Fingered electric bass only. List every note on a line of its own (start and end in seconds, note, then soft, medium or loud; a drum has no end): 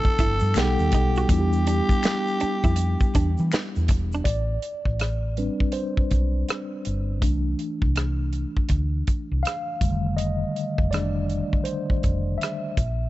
0.20 0.39 G1 medium
0.42 0.53 G2 loud
0.55 0.75 B1 medium
0.79 0.90 D#2 medium
0.93 1.24 B1 medium
1.30 1.80 E2 loud
1.90 muted fingered electric bass stroke soft
2.43 muted fingered electric bass stroke soft
2.65 2.95 F2 medium
3.16 3.35 E2 medium
3.39 3.50 E3 medium
3.77 3.91 E2 medium
3.90 4.20 E1 medium
4.26 4.57 A1 medium
4.86 5.48 A1 medium
6.12 6.42 B1 medium
6.87 7.22 G1 medium
7.22 7.53 C2 loud
7.83 8.44 C2 medium
8.70 9.01 D2 medium
9.32 9.42 C2 medium
9.82 10.43 F1 medium
10.79 11.40 F1 medium
12.05 12.35 F1 medium
12.78 13.09 A#1 medium